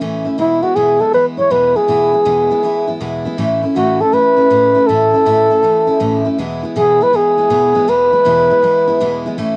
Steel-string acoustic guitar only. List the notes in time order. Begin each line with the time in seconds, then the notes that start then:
0.01 A2 E3 A3 C#4 E4
0.25 A3 C#4 E4
0.38 E2 B2 E3 G#3 B3 E4
0.62 E3 G#3 B3 E4
0.76 E2 B2 E3 G#3 B3 E4
0.99 E3 G#3 B3 E4
1.13 E3 G#3 B3 E4
1.37 E3 G#3 B3 E4
1.50 E2 B2 E3 G#3 B3 E4
1.76 E3 G#3 B3 E4
1.88 E2 B2 E3 G#3 B3 E4
2.13 E3 G#3 B3 E4
2.25 E2 B2 E3 G#3 B3 E4
2.51 E3 G#3 B3 E4
2.63 E3 G#3 B3 E4
2.88 E3 G#3 B3 E4
3.01 E2 B2 E3 G#3 B3 E4
3.25 E3 G#3 B3 E4
3.38 A2 E3 A3 C#4 E4
3.63 A3 C#4 E4
3.76 A2 E3 A3 C#4 E4
4.00 A3 C#4 E4
4.12 E3 A3 C#4 E4
4.37 A3 C#4 E4
4.50 A2 E3 A3 C#4 E4
4.74 A3 C#4 E4
4.89 A2 E3 A3 C#4 E4
5.14 A3 C#4 E4
5.25 A2 E3 A3 C#4 E4
5.50 A3 C#4 E4
5.62 E3 A3 C#4 E4
5.87 A3 C#4 E4
6.00 A2 E3 A3 C#4 E4
6.24 A3 C#4 E4
6.38 E2 B2 E3 G#3 B3 E4
6.63 E3 G#3 B3 E4
6.76 E2 B2 E3 G#3 B3 E4
7.00 E3 G#3 B3 E4
7.13 E3 G#3 B3 E4
7.37 E3 G#3 B3 E4
7.50 E2 B2 E3 G#3 B3 E4
7.74 E3 G#3 B3 E4
7.88 E2 B2 E3 G#3 B3 E4
8.12 E3 G#3 B3 E4
8.25 E2 B2 E3 G#3 B3 E4
8.50 E3 G#3 B3 E4
8.62 E3 G#3 B3 E4
8.88 E3 G#3 B3 E4
9.00 E2 B2 E3 G#3 B3 E4
9.26 E3 G#3 B3 E4
9.38 A2 E3 A3 C#4 E4